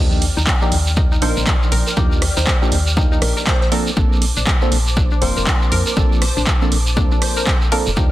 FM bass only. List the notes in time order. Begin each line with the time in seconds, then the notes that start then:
Already playing: D#2
0.37 D#2
0.72 D#2
1.22 A#1
1.37 A#1
1.72 A#1
1.97 D#2
2.37 D#2
2.72 D#2
3.22 A#1
3.97 A#1
4.37 A#1
4.72 A#1
5.22 F1
5.37 F1
5.72 F2
5.97 A#1
6.37 A#1
6.72 A#1
6.97 D2
7.87 F1
7.97 D#2